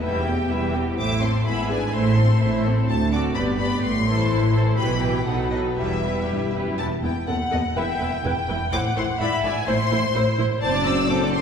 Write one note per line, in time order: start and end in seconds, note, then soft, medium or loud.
0.01 0.45 E1 soft
0.01 0.44 E2 soft
0.01 0.25 G3 soft
0.01 0.25 E4 soft
0.01 0.25 B4 soft
0.01 0.24 E5 soft
0.01 0.73 G5 medium
0.25 0.51 B3 soft
0.25 0.50 G4 soft
0.25 0.51 G4 soft
0.25 0.50 G5 soft
0.50 0.93 E1 soft
0.50 0.92 E2 medium
0.50 0.75 G3 soft
0.50 0.75 E4 soft
0.50 0.74 B4 soft
0.50 0.74 E5 soft
0.74 0.98 B3 soft
0.74 0.98 G4 soft
0.74 0.99 G4 soft
0.74 0.98 G5 soft
0.98 1.40 A1 medium
0.98 1.40 A2 medium
0.98 1.21 A3 soft
0.98 1.21 E4 soft
0.98 1.20 C5 soft
0.98 1.21 E5 soft
0.98 1.21 D6 medium
1.21 1.46 C4 soft
1.21 1.46 A4 soft
1.21 1.46 C5 soft
1.21 1.46 C6 medium
1.46 1.88 G#1 soft
1.46 1.88 G#2 medium
1.46 1.68 B3 soft
1.46 1.68 E4 soft
1.46 1.68 G#4 soft
1.46 1.68 E5 soft
1.46 1.69 B5 medium
1.69 1.93 D4 soft
1.69 1.93 G#4 soft
1.69 1.93 B4 soft
1.69 1.93 D5 soft
1.69 1.93 G#5 medium
1.93 2.35 A1 medium
1.93 2.36 A2 medium
1.93 2.16 A3 soft
1.93 2.16 E4 medium
1.93 2.15 C5 soft
1.93 2.15 E5 soft
1.93 2.65 C6 medium
2.16 2.41 C4 soft
2.16 2.40 A4 soft
2.16 2.40 C5 soft
2.41 2.82 A1 medium
2.41 2.82 A2 medium
2.41 2.65 A3 soft
2.41 2.65 E4 soft
2.41 2.64 C5 soft
2.41 2.64 E5 soft
2.64 2.88 C4 soft
2.64 2.88 A4 soft
2.64 2.88 C5 soft
2.88 3.29 D2 medium
2.88 3.30 D2 medium
2.88 3.10 A5 medium
3.12 3.35 C4 soft
3.12 3.35 F#4 soft
3.12 3.35 A4 soft
3.12 3.34 D5 soft
3.12 3.20 D6 medium
3.35 3.77 G1 medium
3.35 3.77 G2 medium
3.35 3.58 B3 medium
3.35 3.58 G4 medium
3.35 3.57 B4 soft
3.35 3.58 D5 soft
3.35 3.43 B5 medium
3.59 3.82 B3 medium
3.59 3.82 G4 medium
3.59 3.82 B4 medium
3.59 3.82 D5 soft
3.59 3.82 B5 medium
3.82 4.24 A1 medium
3.82 4.25 A2 medium
3.82 4.53 C6 medium
4.06 4.53 E3 soft
4.06 4.53 E4 soft
4.06 4.53 A4 medium
4.06 4.53 C5 medium
4.30 4.72 A1 medium
4.30 4.72 A2 medium
4.54 4.77 E3 soft
4.54 4.77 E4 soft
4.54 4.78 A4 soft
4.54 4.78 C5 soft
4.77 5.21 B1 medium
4.77 5.21 B2 medium
4.77 5.01 E3 soft
4.77 5.02 E4 soft
4.77 5.01 G4 soft
4.77 5.01 B4 soft
4.77 5.00 B5 medium
5.02 5.26 E3 soft
5.02 5.26 E4 soft
5.02 5.26 G4 soft
5.02 5.26 B4 soft
5.02 5.26 G5 medium
5.25 5.71 B1 soft
5.25 5.71 B2 medium
5.25 5.50 F#3 soft
5.25 5.51 D#4 soft
5.25 5.50 A4 soft
5.25 5.50 B4 soft
5.25 5.51 F#5 medium
5.50 5.76 F#3 soft
5.50 5.76 D#4 soft
5.50 5.76 A4 soft
5.50 5.76 B4 soft
5.50 5.58 D#5 medium
5.76 6.22 E1 medium
5.76 6.22 E2 medium
5.76 6.02 G3 soft
5.76 6.02 E4 soft
5.76 6.02 G4 soft
5.76 6.02 B4 soft
5.76 6.52 E5 medium
6.03 6.53 G3 soft
6.03 6.53 E4 soft
6.03 6.53 G4 soft
6.03 6.53 B4 soft
6.28 6.73 E1 soft
6.28 6.38 G2 soft
6.54 6.79 F#2 soft
6.54 6.79 G3 soft
6.54 6.78 E4 soft
6.54 6.78 G4 soft
6.54 6.78 B4 soft
6.78 6.87 E1 medium
6.78 6.87 E2 medium
6.78 6.87 B3 soft
6.78 6.87 E4 soft
6.78 6.86 A5 medium
7.03 7.11 E1 soft
7.03 7.11 E2 soft
7.03 7.11 B3 soft
7.03 7.11 E4 soft
7.03 7.27 G5 soft
7.27 7.36 D#2 soft
7.27 7.36 D#2 medium
7.27 7.35 B3 soft
7.27 7.35 A4 medium
7.27 7.35 F#5 medium
7.27 7.73 F#5 medium
7.51 7.59 D#2 soft
7.51 7.60 D#2 medium
7.51 7.59 B3 soft
7.51 7.60 A4 soft
7.51 7.59 D#5 medium
7.75 7.83 E1 medium
7.75 7.84 E2 medium
7.75 7.84 E4 medium
7.75 7.84 B4 medium
7.75 8.24 E5 medium
7.75 8.47 G5 medium
8.00 8.07 E1 soft
8.00 8.09 E2 soft
8.00 8.08 E4 soft
8.00 8.08 B4 soft
8.24 8.32 E1 medium
8.24 8.32 E2 medium
8.24 8.32 E4 medium
8.24 8.33 B4 medium
8.24 8.72 G5 medium
8.48 8.56 E1 medium
8.48 8.56 E2 medium
8.48 8.57 E4 soft
8.48 8.57 B4 soft
8.72 8.80 A1 medium
8.72 8.80 A2 medium
8.72 8.81 E4 medium
8.72 8.81 C5 medium
8.72 9.20 F#5 medium
8.72 8.81 D6 medium
8.96 9.04 A1 medium
8.96 9.04 A2 medium
8.96 9.04 E4 soft
8.96 9.05 C5 soft
8.96 9.05 C6 medium
9.20 9.28 G#1 medium
9.20 9.28 G#2 medium
9.20 9.28 E4 medium
9.20 9.29 D5 medium
9.20 9.68 E5 medium
9.20 9.43 B5 medium
9.43 9.51 G#1 medium
9.43 9.52 G#2 medium
9.43 9.52 E4 medium
9.43 9.52 D5 medium
9.43 9.67 G#5 medium
9.66 9.75 A1 medium
9.66 9.76 A2 medium
9.66 9.75 E4 medium
9.66 10.59 C5 medium
9.66 9.76 C5 medium
9.66 10.37 C6 medium
9.91 9.99 A1 medium
9.91 10.00 A2 medium
9.91 9.99 E4 medium
9.91 9.99 C5 medium
10.14 10.23 A1 medium
10.14 10.23 A2 medium
10.14 10.23 E4 medium
10.14 10.22 C5 medium
10.38 10.46 A1 medium
10.38 10.46 A2 medium
10.38 10.47 E4 medium
10.38 10.47 C5 medium
10.61 11.41 F#1 medium
10.61 11.41 F#2 medium
10.61 10.73 C4 medium
10.61 10.73 C5 medium
10.61 11.08 D5 medium
10.61 10.83 A5 medium
10.75 10.86 D4 medium
10.75 10.86 D5 soft
10.85 10.97 C4 soft
10.85 10.97 C5 medium
10.85 11.08 E6 medium
10.98 11.09 D4 medium
10.98 11.09 D5 soft
11.09 11.20 C4 medium
11.09 11.41 A4 medium
11.09 11.20 C5 medium
11.09 11.32 D6 medium
11.21 11.32 D4 soft
11.21 11.32 D5 medium
11.31 11.41 C4 medium
11.31 11.41 C5 medium
11.31 11.41 C6 medium